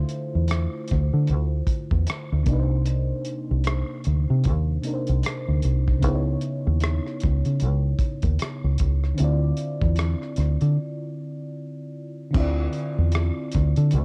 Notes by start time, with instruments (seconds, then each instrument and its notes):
Already playing: fm electric piano D3 A3 E4 F4 C5
0.09 closed hi-hat
0.35 fingered electric bass E2
0.48 cross-stick, closed hi-hat
0.88 kick, cross-stick, closed hi-hat
0.92 fingered electric bass D2
1.13 fingered electric bass D3
1.27 fingered electric bass D2, closed hi-hat
1.67 kick, closed hi-hat
1.91 fingered electric bass E2, kick
2.07 cross-stick, closed hi-hat
2.32 fingered electric bass D2
2.43 fm electric piano C3 A#3, kick, closed hi-hat
2.48 fingered electric bass C2, fm electric piano D4 D#4
2.53 fm electric piano B4
2.60 fm electric piano C5
2.86 closed hi-hat
3.25 closed hi-hat
3.51 fingered electric bass C2
3.64 cross-stick, closed hi-hat
4.04 fingered electric bass D2, closed hi-hat
4.30 fingered electric bass C3
4.44 fingered electric bass D#2, kick, closed hi-hat
4.83 fm electric piano C3 A#3 D4 D#4, closed hi-hat
4.87 fm electric piano A#4
4.94 fm electric piano C5
5.07 fingered electric bass C2, closed hi-hat
5.23 cross-stick, closed hi-hat
5.48 fingered electric bass D2
5.62 fingered electric bass C2, closed hi-hat
5.88 kick, cross-stick
5.99 fm electric piano C#3 B3, kick, closed hi-hat
6.04 fingered electric bass C#2, fm electric piano D#4 E4
6.09 fm electric piano C5
6.15 fm electric piano C#5
6.41 closed hi-hat
6.67 fingered electric bass D#2
6.80 cross-stick, closed hi-hat
7.06 cross-stick
7.20 kick, cross-stick, closed hi-hat
7.24 fingered electric bass C#2
7.45 fingered electric bass C#3, closed hi-hat
7.60 fingered electric bass C#2, closed hi-hat
7.99 kick, closed hi-hat
8.22 fingered electric bass D#2, kick, closed hi-hat
8.39 cross-stick, closed hi-hat
8.64 fingered electric bass C#2
8.78 fingered electric bass C#2, kick, closed hi-hat
9.04 cross-stick
9.14 fm electric piano D3 C4, closed hi-hat
9.19 fingered electric bass D2, fm electric piano E4 F4
9.24 fm electric piano D5
9.57 closed hi-hat
9.81 fingered electric bass E2, kick
9.96 cross-stick, closed hi-hat
10.22 cross-stick
10.36 fingered electric bass D2, cross-stick, closed hi-hat
10.61 fingered electric bass D3, closed hi-hat
12.31 fm electric piano D3 C4, kick, crash
12.35 fingered electric bass D2, fm electric piano E4 F4
12.40 fm electric piano D5
12.73 closed hi-hat
12.98 fingered electric bass E2
13.12 cross-stick, closed hi-hat
13.52 fingered electric bass D2, kick, cross-stick, closed hi-hat
13.77 fingered electric bass D3, closed hi-hat
13.91 fingered electric bass D2, closed hi-hat